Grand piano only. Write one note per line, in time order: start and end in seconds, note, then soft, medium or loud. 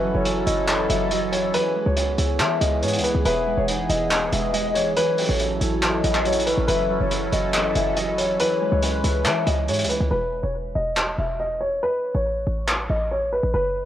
0.00 0.13 B4 loud
0.15 0.24 C#5 medium
0.47 0.87 D#5 medium
0.89 1.09 E5 medium
1.11 1.30 D#5 medium
1.32 1.52 C#5 medium
1.54 1.84 B4 loud
1.86 2.37 C#5 medium
2.61 2.80 D#5 medium
2.83 3.02 C#5 medium
3.04 3.23 B4 medium
3.26 3.56 B4 loud
3.58 3.67 C#5 medium
3.89 4.30 D#5 medium
4.32 4.52 E5 medium
4.54 4.73 D#5 medium
4.75 4.94 C#5 medium
4.97 5.27 B4 loud
5.29 5.79 C#5 medium
6.04 6.23 D#5 medium
6.26 6.45 C#5 medium
6.46 6.66 B4 medium
6.68 6.98 B4 loud
7.01 7.10 C#5 medium
7.33 7.73 D#5 medium
7.75 7.95 E5 medium
7.97 8.16 D#5 medium
8.18 8.38 C#5 medium
8.40 8.70 B4 loud
8.72 9.22 C#5 medium
9.47 9.66 D#5 medium
9.69 9.88 C#5 medium
9.89 10.09 B4 medium
10.11 10.41 B4 loud
10.43 10.53 C#5 medium
10.75 11.16 D#5 medium
11.19 11.38 E5 medium
11.40 11.59 D#5 medium
11.61 11.80 C#5 medium
11.83 12.13 B4 loud
12.15 12.65 C#5 medium
12.90 13.09 D#5 medium
13.11 13.31 C#5 medium
13.33 13.52 B4 medium
13.54 13.84 B4 loud